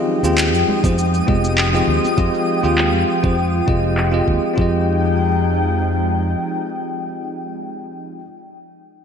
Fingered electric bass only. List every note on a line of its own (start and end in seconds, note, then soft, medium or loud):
0.23 0.53 D#2 medium
0.53 0.63 F2 medium
0.84 1.20 F2 medium
1.28 1.80 F1 medium
1.88 1.98 D#2 medium
2.18 2.28 F2 medium
2.64 2.94 D#2 medium
2.94 3.03 F2 medium
3.24 3.60 F2 medium
3.68 4.20 F1 medium
4.28 4.38 D#2 medium
4.58 6.34 F2 medium